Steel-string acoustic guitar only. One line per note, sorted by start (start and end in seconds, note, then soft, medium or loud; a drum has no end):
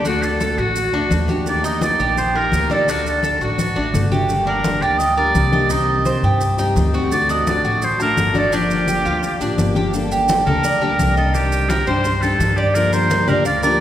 0.05 0.75 D3 medium
0.05 0.75 A3 medium
0.05 0.76 D4 medium
0.05 0.76 F#4 medium
0.76 muted steel-string acoustic guitar stroke medium
0.94 1.11 A3 medium
0.94 1.11 D4 medium
0.94 1.11 F#4 medium
1.11 1.28 D3 medium
1.11 1.29 A3 medium
1.11 1.29 D4 medium
1.11 1.28 F#4 medium
1.29 1.47 A3 medium
1.29 1.47 D4 medium
1.29 1.46 F#4 medium
1.46 2.16 D#3 medium
1.46 2.17 A#3 medium
1.46 2.17 D#4 medium
1.50 2.18 G4 medium
2.17 muted steel-string acoustic guitar stroke medium
2.35 2.52 A#3 soft
2.35 2.53 D#4 medium
2.35 2.52 G4 medium
2.52 2.70 D#3 medium
2.52 2.70 A#3 medium
2.52 2.70 D#4 medium
2.52 2.69 G4 medium
2.70 2.88 A#3 medium
2.70 2.88 D#4 medium
2.70 2.87 G4 medium
2.87 3.58 D3 medium
2.87 3.58 A3 medium
2.87 3.60 D4 medium
2.87 3.59 F#4 medium
3.59 muted steel-string acoustic guitar stroke medium
3.76 3.94 A3 soft
3.76 3.94 D4 medium
3.76 3.93 F#4 medium
3.94 4.11 D3 medium
3.94 4.11 A3 medium
3.94 4.12 D4 medium
3.94 4.10 F#4 medium
4.12 4.30 A3 soft
4.12 4.29 D4 medium
4.12 4.29 F#4 medium
4.28 4.99 D3 medium
4.28 5.00 G3 medium
4.28 4.99 A#3 medium
4.28 5.00 D4 medium
4.28 5.01 G4 medium
5.00 muted steel-string acoustic guitar stroke medium
5.17 5.33 G3 medium
5.17 5.34 A#3 medium
5.17 5.35 D4 medium
5.17 5.34 G4 medium
5.34 5.52 G3 medium
5.34 5.52 A#3 medium
5.34 5.53 D4 medium
5.34 5.51 G4 medium
5.52 5.71 G3 medium
5.52 5.70 A#3 medium
5.52 5.70 D4 medium
5.52 5.70 G4 medium
5.70 6.40 C3 medium
5.70 6.40 D#3 medium
5.70 6.40 G3 medium
5.70 6.41 C4 medium
5.70 6.41 G4 medium
6.41 muted steel-string acoustic guitar stroke medium
6.58 6.74 D#3 medium
6.58 6.75 G3 medium
6.58 6.76 C4 medium
6.58 6.75 G4 medium
6.76 6.93 D#3 medium
6.76 6.93 G3 medium
6.76 6.93 C4 medium
6.76 6.92 G4 medium
6.93 7.10 D#3 medium
6.93 7.11 G3 medium
6.93 7.11 C4 medium
6.93 7.11 G4 medium
7.10 7.81 D3 medium
7.10 7.81 A3 medium
7.10 7.82 D4 medium
7.14 7.82 F#4 medium
7.82 muted steel-string acoustic guitar stroke medium
8.00 8.17 A3 medium
8.00 8.17 D4 medium
8.00 8.17 F#4 medium
8.17 8.34 D3 medium
8.17 8.35 A3 medium
8.17 8.34 D4 medium
8.17 8.33 F#4 medium
8.34 8.53 A3 medium
8.34 8.52 D4 medium
8.34 8.51 F#4 medium
8.51 9.22 D3 medium
8.51 9.22 F3 medium
8.51 9.22 A#3 medium
8.51 9.23 D4 medium
8.51 9.23 G4 medium
9.23 muted steel-string acoustic guitar stroke medium
9.40 9.56 F3 medium
9.40 9.57 A#3 medium
9.40 9.58 D4 medium
9.40 9.57 G4 medium
9.58 9.75 F3 medium
9.58 9.75 A#3 medium
9.58 9.75 D4 medium
9.58 9.74 G4 medium
9.75 9.93 F3 medium
9.75 9.93 A#3 medium
9.75 9.93 D4 medium
9.75 9.92 G4 medium
9.93 10.28 D3 medium
9.93 10.28 G3 medium
9.93 10.28 A#3 medium
9.93 10.29 D4 medium
9.93 10.29 A4 medium
10.29 10.46 G3 soft
10.29 10.46 A#3 medium
10.29 10.47 D4 medium
10.29 10.46 A4 soft
10.47 10.64 G3 soft
10.47 10.64 A#3 medium
10.47 10.64 D4 medium
10.47 10.64 A4 medium
10.64 muted steel-string acoustic guitar stroke medium
10.81 10.98 G3 medium
10.81 10.99 A#3 medium
10.81 10.99 D4 medium
10.81 10.98 A4 medium
10.99 11.34 G3 medium
10.99 11.34 A#3 medium
10.99 11.34 D4 medium
10.99 11.35 A4 medium
11.34 11.69 C3 medium
11.34 11.69 D#3 medium
11.34 11.69 G3 medium
11.34 11.70 D4 medium
11.34 11.70 G4 medium
11.70 11.87 D#3 soft
11.70 11.87 G3 soft
11.70 11.87 D4 medium
11.70 11.86 G4 medium
11.88 12.05 D#3 medium
11.88 12.05 G3 medium
11.88 12.05 D4 medium
11.88 12.04 G4 medium
12.05 muted steel-string acoustic guitar stroke medium
12.23 12.39 D#3 medium
12.23 12.40 G3 medium
12.23 12.40 D4 medium
12.23 12.40 G4 medium
12.40 12.75 D#3 medium
12.40 12.75 G3 medium
12.40 12.75 D4 medium
12.40 12.76 G4 medium
12.75 13.10 D3 medium
12.75 13.09 F3 medium
12.75 13.10 A#3 medium
12.75 13.11 D4 medium
12.75 13.11 G4 medium
13.10 13.27 F3 medium
13.10 13.28 A#3 soft
13.10 13.27 D4 soft
13.10 13.26 G4 medium
13.27 13.44 F3 medium
13.27 13.45 A#3 medium
13.27 13.45 D4 medium
13.27 13.45 G4 medium
13.45 muted steel-string acoustic guitar stroke medium
13.63 13.79 F3 medium
13.63 13.80 A#3 medium
13.63 13.80 D4 medium
13.63 13.80 G4 medium